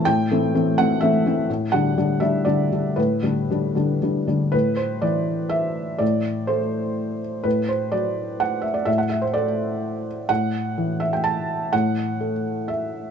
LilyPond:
<<
  \new Staff \with { instrumentName = "Felt piano" } { \time 3/4 \key a \dorian \tempo 4 = 125 g''4. fis''8 e''4 | r8 fis''4 e''8 d''4 | b'2 r4 | b'8 c''8 d''4 e''4 |
d''4 c''4. r8 | b'8 c''8 d''4 fis''8 e''16 d''16 | e''16 fis''16 e''16 c''16 d''4. r8 | fis''4. e''16 g''16 a''4 |
fis''2 e''4 | }
  \new Staff \with { instrumentName = "Felt piano" } { \clef bass \time 3/4 \key a \dorian a,8 <e a c'>8 <e a c'>8 <e a c'>8 <e a c'>8 <e a c'>8 | a,8 <d g d'>8 <d g d'>8 <d g d'>8 <d g d'>8 <d g d'>8 | a,8 <d g d'>8 <d g d'>8 <d g d'>8 <d g d'>8 <d g d'>8 | a,4 e2 |
a,4 a2 | a,4 fis2 | a,4 a2 | a,4 e2 |
a,4 a2 | }
>>